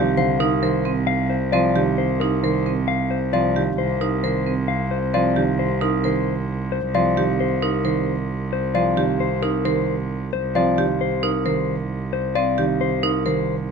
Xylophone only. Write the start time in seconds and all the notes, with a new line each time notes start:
0.18 F5
1.53 F5
3.33 F5
5.14 F5
6.95 F5
8.75 F5
10.55 F5
12.36 F5